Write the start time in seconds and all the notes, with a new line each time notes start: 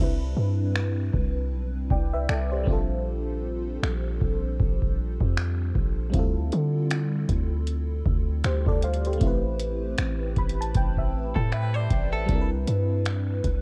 Already playing: G3 C4
0.00 C2 D4 E4 B4
0.37 G2
0.76 finger snap
1.13 C2, kick
1.52 B1
1.74 C2
1.90 C2 D5 G5, kick
2.13 B4 E5
2.29 C2 A4 D5, finger snap
2.52 G4 C5
2.64 A#1 G3 C4, kick
2.68 D4 F4
2.73 A4
3.83 A#1, finger snap
4.21 A#1, kick
4.60 A#1, kick
4.82 kick
5.20 F2, kick
5.37 finger snap
5.75 A#1, kick
6.10 G3 C4, kick, closed hi-hat
6.14 D2 E4 F4
6.19 A4
6.52 D3, closed hi-hat
6.91 finger snap, closed hi-hat
7.29 D2, kick, closed hi-hat
7.67 closed hi-hat
8.06 D2, kick
8.44 D2 G4 C5, finger snap, closed hi-hat
8.66 D2 A4 D5, kick
8.82 C5 F5, closed hi-hat
8.94 closed hi-hat
9.05 G4 C5, closed hi-hat
9.13 closed hi-hat
9.18 A1 A3 C4, kick, closed hi-hat
9.23 E4 G4
9.27 B4
9.60 closed hi-hat
9.98 A1, finger snap, closed hi-hat
10.36 A1 B5, kick, closed hi-hat
10.49 closed hi-hat
10.60 A5, closed hi-hat
10.74 A1 G5, kick, closed hi-hat
10.97 E5, kick
11.36 A2 A4 G5, kick
11.52 B4 E5, finger snap, closed hi-hat
11.74 C5 D5
11.90 A1, kick, closed hi-hat
12.13 A4
12.26 C2 G3 C4, kick, closed hi-hat
12.30 D4 E4
12.35 A#4
12.41 B4
12.67 G2, closed hi-hat
13.05 finger snap, closed hi-hat
13.44 C2, kick, closed hi-hat